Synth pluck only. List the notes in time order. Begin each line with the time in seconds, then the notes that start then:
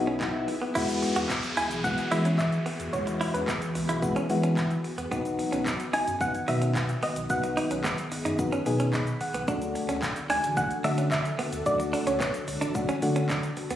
1.57 G#5
1.84 F#5
2.11 E5
2.38 E5
2.93 C#5
3.34 B4
5.94 G#5
6.21 F#5
6.49 E5
7.03 D#5
7.30 F#5
10.30 G#5
10.57 F#5
10.84 E5
11.12 E5
11.66 D5
12.07 C#5